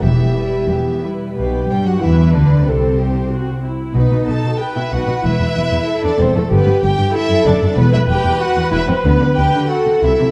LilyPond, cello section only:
\new Staff \with { instrumentName = "Cello section" } { \clef bass \time 2/4 \key e \minor \tempo 4 = 94 e,4 e,4 | b,8 g16 fis16 e8 d8 | c4. r8 | b,16 b,16 b,16 b,16 r16 b,16 b,16 b,16 |
e,16 e,16 e,16 e,16 r16 e,16 e,16 e,16 | g,16 g,16 g,16 g,16 r16 fis,16 fis,16 fis,16 | e,16 e,16 e,16 e,16 r16 e,16 e,16 e,16 | d16 d16 d16 d16 r16 c16 c16 c16 | }